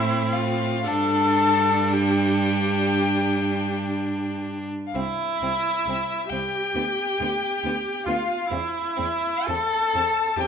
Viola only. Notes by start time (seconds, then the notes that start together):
Already playing: E4
0.35 F4
0.87 A4
1.92 G4
4.95 E4
6.29 G4
8.06 F4
8.49 E4
9.47 A4
10.36 G4